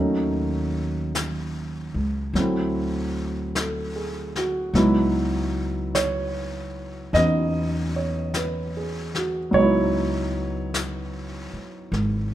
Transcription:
Already playing: D#2 F#3 A3 C#4
0.00 D#4
1.15 brush sweep, snare, hi-hat pedal
1.94 C#2
2.34 D2 F#3 A3, brush sweep, snare
2.39 C4 E4
3.55 A4, brush sweep, snare, hi-hat pedal
3.96 G#4
4.36 F#4, snare
4.74 C#2 F#3 B3 D#4 E4, brush sweep, snare
5.95 C#5, brush sweep, snare, hi-hat pedal
7.13 E2 B3 D#5, brush sweep, snare
7.17 C#4 D#4
7.96 C#5
8.34 B4, brush sweep, snare, hi-hat pedal
8.77 G#4
9.15 F#4, snare
9.51 C#2 F#3 B3 C#5, brush sweep
9.58 D#4
9.62 E4
10.74 brush sweep, snare, hi-hat pedal
11.53 muted upright bass stroke
11.92 G#1, brush sweep, snare

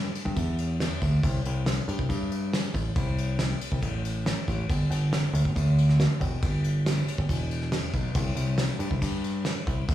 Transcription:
0.15 crash
0.25 G2, kick
0.36 E2, kick, crash
0.58 crash
0.80 snare, crash
1.02 D2, kick, crash
1.23 C2, kick, crash
1.45 C2, crash
1.66 snare, crash
1.88 G2, crash
1.99 C2, kick
2.09 G2, kick, crash
2.31 crash
2.53 snare, crash
2.74 A1, kick, crash
2.96 C2, kick, crash
3.18 crash
3.39 snare, crash
3.61 crash
3.72 C2, kick
3.82 A1, kick, crash
4.05 crash
4.26 snare, crash
4.48 A1, kick, crash
4.70 G1, kick, crash
4.90 G1, crash
5.13 snare, crash
5.33 D2, crash
5.45 G1, kick
5.56 D2, kick, crash
5.78 crash
5.89 snare
6.00 snare, crash
6.20 E1, kick, crash
6.42 G1, kick, crash
6.64 crash
6.86 snare, crash
7.08 crash
7.18 G1, kick
7.29 E1, kick, crash
7.51 crash
7.62 snare
7.72 snare, crash
7.93 B1, kick, crash
8.15 C2, kick, crash
8.35 C2, crash
8.58 snare, crash
8.79 G2, crash
8.91 C2, kick
9.02 G2, kick, crash
9.24 crash
9.45 snare, crash
9.67 C2, kick, crash
9.89 D2, kick, crash

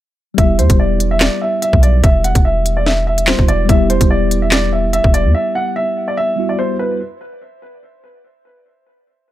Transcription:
0.34 E1 G3 B3 E5, kick, closed hi-hat
0.39 E4 G4
0.59 E2 C5, closed hi-hat
0.70 E1, kick, closed hi-hat
0.79 D5
1.00 closed hi-hat
1.11 E5
1.20 D5, snare, clap, closed hi-hat
1.42 E5
1.62 E5, closed hi-hat
1.73 B1, kick
1.83 D5, closed hi-hat
2.04 E1 E5, kick, closed hi-hat
2.24 F#5, closed hi-hat
2.35 E1, kick, closed hi-hat
2.45 E5
2.66 closed hi-hat
2.77 D5
2.86 E5, snare
3.07 E5
3.18 closed hi-hat
3.26 G3 B3 E4 F#4 C5, snare, clap
3.39 E1, kick
3.48 E1 D5, closed hi-hat
3.65 E1 G3 B3 E5, kick, closed hi-hat
3.70 E4 G4
3.90 C5, closed hi-hat
4.01 E1, kick, closed hi-hat
4.10 D5
4.31 closed hi-hat
4.42 E5
4.51 D5, snare, clap, closed hi-hat
4.73 E5
4.93 E5, closed hi-hat
5.04 E1, kick
5.14 D5, closed hi-hat
5.25 E2
5.35 E5
5.55 F#5
5.76 E5
6.08 D5
6.17 E5
6.36 G3 B3 E4 F#4
6.49 D5
6.59 C5
6.79 B4

